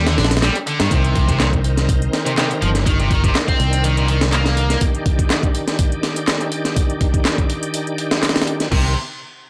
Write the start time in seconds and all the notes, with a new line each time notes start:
Already playing: D#2
0.07 D3, snare, closed hi-hat
0.18 A#1 D4, snare, closed hi-hat
0.24 snare, closed hi-hat
0.31 snare, closed hi-hat
0.37 snare, closed hi-hat
0.42 G3, snare, clap, closed hi-hat
0.55 closed hi-hat
0.67 D3, closed hi-hat
0.80 G2 D#3, snare, closed hi-hat
0.91 C2 C3 D#3 C4 A#4, kick, closed hi-hat
1.04 closed hi-hat
1.16 kick, closed hi-hat
1.28 C3, kick, closed hi-hat
1.40 A#2, snare, clap, closed hi-hat
1.53 kick, closed hi-hat
1.64 closed hi-hat
1.77 snare, closed hi-hat
1.89 kick, closed hi-hat
2.02 closed hi-hat
2.13 snare, closed hi-hat
2.26 C3, closed hi-hat
2.38 C3, snare, clap, closed hi-hat
2.51 closed hi-hat
2.62 G1 F3, closed hi-hat
2.75 snare, closed hi-hat
2.86 D#3 D4, kick, closed hi-hat
2.99 C3, closed hi-hat
3.11 D#3, kick, closed hi-hat
3.24 C3, kick, closed hi-hat
3.35 snare, clap, closed hi-hat
3.48 C4, kick, closed hi-hat
3.60 C2, closed hi-hat
3.73 closed hi-hat
3.84 D#3, closed hi-hat
3.97 A#2, closed hi-hat
4.08 D#3, closed hi-hat
4.21 snare, closed hi-hat
4.33 A#3, clap, closed hi-hat
4.46 snare, closed hi-hat
4.57 closed hi-hat
4.70 snare, closed hi-hat
4.81 D#3 G4, kick, closed hi-hat
4.95 closed hi-hat
5.06 kick, closed hi-hat
5.19 kick, closed hi-hat
5.30 snare, clap, closed hi-hat
5.43 kick, closed hi-hat
5.55 closed hi-hat
5.68 snare, closed hi-hat
5.79 kick, closed hi-hat
5.92 closed hi-hat
6.03 snare, closed hi-hat
6.16 closed hi-hat
6.28 snare, clap, closed hi-hat
6.41 closed hi-hat
6.52 closed hi-hat
6.65 snare, closed hi-hat
6.77 kick, closed hi-hat
6.90 closed hi-hat
7.01 kick, closed hi-hat
7.14 kick, closed hi-hat
7.25 snare, clap, closed hi-hat
7.38 kick, closed hi-hat
7.50 closed hi-hat
7.63 closed hi-hat
7.74 closed hi-hat
7.87 closed hi-hat
7.98 closed hi-hat
8.11 snare, closed hi-hat
8.23 snare, clap, closed hi-hat
8.29 snare, closed hi-hat
8.36 snare, closed hi-hat
8.42 snare, closed hi-hat
8.47 closed hi-hat
8.60 snare, closed hi-hat
8.72 C2 C3 D#3 C4 A#4, kick, crash